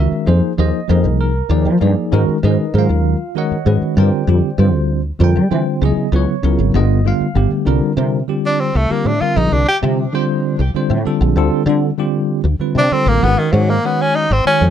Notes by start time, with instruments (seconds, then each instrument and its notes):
Already playing: tine electric piano D#3 G#3 C#4 F#4 A#4 E5
0.11 muted fretless electric bass stroke
0.26 fretless electric bass F2, tine electric piano F3 A#3 D#4 G#4 C5
0.58 fretless electric bass D#2, tine electric piano F3 A#3 D#4 G#4 C5 D#5
0.88 fretless electric bass F2, tine electric piano F3 A#3 D#4 G#4 A#4
1.04 fretless electric bass C2
1.21 tine electric piano A#4
1.49 fretless electric bass D#2, tine electric piano F3 A#3 D#4 G#4 D5
1.65 fretless electric bass F3
1.80 fretless electric bass G2, tine electric piano F3 A#3 D#4 G#4 D5
2.12 fretless electric bass G#2, tine electric piano D#3 G#3 C#4 F#4 A#4
2.28 muted fretless electric bass stroke
2.43 fretless electric bass G#2, tine electric piano D#3 G#3 C#4 D#4 F#4 G#4 A#4 B4 D#5
2.74 fretless electric bass G#2, tine electric piano D#3 F#3 G#3 C#4 A#4
2.78 tine electric piano F4 F5
2.89 fretless electric bass D#2
3.35 tine electric piano D#3 G#3 C#4 F#4 A#4 C#5 D#5 F#5
3.51 muted fretless electric bass stroke
3.65 fretless electric bass G#2, tine electric piano D#3 G#3 C#4 F#4 B4
3.81 muted fretless electric bass stroke
3.96 fretless electric bass G2, tine electric piano D3 G3 C4 F4 A#4 D5 G5
4.00 tine electric piano G4 C5
4.27 fretless electric bass F2, tine electric piano D3 G3 C4 F4 G4
4.58 fretless electric bass G2, tine electric piano D3 G3 C4 F4 C5
4.74 fretless electric bass D2
5.19 fretless electric bass F2, tine electric piano D3 G3 C4 F4 A#4
5.24 tine electric piano G5
5.36 fretless electric bass G3
5.50 tine electric piano D3 G3 C4 F4 C5, fretless electric bass E3
5.81 fretless electric bass C#2, tine electric piano C#3 F#3 B3 E4 G#4 D#5
5.96 muted fretless electric bass stroke
6.12 fretless electric bass C#2, tine electric piano C#3 F#3 B3 E4 B4 C#5
6.43 fretless electric bass C#2, tine electric piano C#3 F#3 B3 E4 A#4
6.59 fretless electric bass G#1
6.74 fretless electric bass G1, tine electric piano D3 G3 A3 B3 F4 D#5
7.05 tine electric piano D3 G3 A3 B3 F4 F5
7.20 muted fretless electric bass stroke
7.35 fretless electric bass G1, tine electric piano D3 G3 A3 B3 G4
7.51 muted fretless electric bass stroke
7.65 fretless electric bass C2, tine electric piano D3 G3 C4 F4 A#4
7.97 fretless electric bass C3, tine electric piano D3 G3 C4 F4 A#4
8.28 tine electric piano D3 G3 C4 F4 G4
8.46 tenor saxophone D4
8.60 tenor saxophone C4
8.75 fretless electric bass C2, tenor saxophone A3
8.89 tine electric piano D3 G3 C4 F4 G4, tenor saxophone A#3
9.05 fretless electric bass A2, tenor saxophone D4
9.20 tine electric piano D3 G3 C4 F4 A#4, tenor saxophone F4, muted fretless electric bass stroke
9.36 fretless electric bass A#1, tenor saxophone D#4
9.52 fretless electric bass C2, tenor saxophone D4
9.68 tenor saxophone G4
9.82 fretless electric bass C3, tine electric piano D3 G3 C4 F4 G4
10.13 tine electric piano D3 G3 C4 F4 C5
10.59 fretless electric bass C2
10.74 tine electric piano D3 G3 C4 F4 C5, muted fretless electric bass stroke
10.90 fretless electric bass A2
11.05 tine electric piano D3 G3 C4 F4 A4, muted fretless electric bass stroke
11.21 fretless electric bass A#1
11.36 fretless electric bass D2, tine electric piano D3 G3 C4 F4 A4
11.66 fretless electric bass D3, tine electric piano D3 G3 C4 F4 A4
11.98 tine electric piano D3 G3 C4 F4 G4
12.44 fretless electric bass D2
12.59 tine electric piano D3 G3 C4 F4 B4, muted fretless electric bass stroke
12.75 fretless electric bass C3, tenor saxophone D4
12.91 tine electric piano D3 G3 C4 F4 A4, tenor saxophone C4, muted fretless electric bass stroke
13.06 fretless electric bass A1, tenor saxophone A#3
13.22 fretless electric bass G#1, tine electric piano D#3 G#3 C#4 F#4 A#4, tenor saxophone B3
13.38 tenor saxophone D#3
13.52 fretless electric bass G#2, tine electric piano D#3 G#3 C#4 F#4 C#5, tenor saxophone F#3
13.70 tenor saxophone A#3
13.84 tine electric piano D#3 G#3 C#4 F#4 C#5, tenor saxophone B3
14.01 tenor saxophone C#4
14.15 tenor saxophone D#4
14.30 fretless electric bass G#1, tenor saxophone C4
14.45 tine electric piano D#3 G#3 C#4 F#4 C#5, tenor saxophone C#4, muted fretless electric bass stroke
14.61 fretless electric bass F2